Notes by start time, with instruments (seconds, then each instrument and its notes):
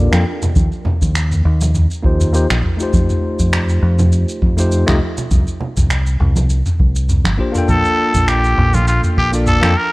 0.11 fingered electric bass F2, tine electric piano A#3 D4 F4 A4 G5, finger snap, high conga, shaker
0.42 mid tom, low conga, shaker
0.56 fingered electric bass D#2, kick, high conga, shaker
0.72 shaker
0.85 mid tom, low conga
1.02 fingered electric bass D#2, kick, high conga, shaker
1.16 finger snap, shaker
1.32 mid tom, shaker
1.45 fingered electric bass D#2
1.61 high conga, low conga, shaker
1.75 mid tom, shaker
1.91 shaker
2.03 fingered electric bass D#2, tine electric piano A#3 D#4 F4 G4 C5, kick, high conga
2.21 mid tom, shaker
2.33 tine electric piano A#3 D#4 F4 G4 C5, shaker
2.50 fingered electric bass A#1, finger snap, high conga, shaker
2.64 kick, mid tom
2.77 tine electric piano A3 D#4 F4, shaker
2.82 tine electric piano G4 C5
2.94 fingered electric bass F2, kick, high conga, shaker
3.10 mid tom, shaker
3.39 fingered electric bass F2, kick, high conga, shaker
3.53 finger snap, mid tom, shaker
3.69 shaker
3.82 fingered electric bass F2
3.99 mid tom, high conga, low conga, shaker
4.12 shaker
4.28 shaker
4.42 fingered electric bass F2, kick, mid tom, high conga
4.57 tine electric piano A3 D#4 F4 G4 C5, shaker
4.72 shaker
4.86 fingered electric bass C2, tine electric piano A3 D#4 F4 G4 D#5, finger snap, mid tom, high conga, shaker
5.18 low conga, shaker
5.31 fingered electric bass C2, kick, mid tom, high conga, shaker
5.47 shaker
5.61 low conga
5.77 fingered electric bass C2, kick, mid tom, high conga, shaker
5.90 finger snap, shaker
6.07 shaker
6.20 fingered electric bass C2, mid tom
6.36 high conga, low conga, shaker
6.50 shaker
6.66 mid tom, shaker
6.80 fingered electric bass C2, kick, high conga
6.96 shaker
7.09 mid tom, shaker
7.24 fingered electric bass G1, finger snap, high conga, shaker
7.38 tine electric piano A#3 D4 F4 G4 C5, kick
7.52 tine electric piano A#3 D4 F4, mid tom, shaker
7.56 tine electric piano A4 G5
7.69 fingered electric bass A#1, muted trumpet A4, kick, mid tom, high conga, shaker
7.85 shaker
8.14 fingered electric bass A#1, kick, mid tom, high conga, shaker
8.28 muted trumpet G4, finger snap, shaker
8.44 shaker
8.58 fingered electric bass A#1, mid tom
8.74 muted trumpet F4, high conga, low conga, shaker
8.88 muted trumpet F4, shaker
9.03 mid tom, shaker
9.17 fingered electric bass A#1, muted trumpet G4, kick, high conga
9.32 tine electric piano A#3 D4 F4 A4 D5, shaker
9.47 muted trumpet A4, mid tom, shaker
9.61 fingered electric bass F2, tine electric piano A#3 D4 F4 A4 G5, finger snap, high conga, shaker
9.77 muted trumpet A#4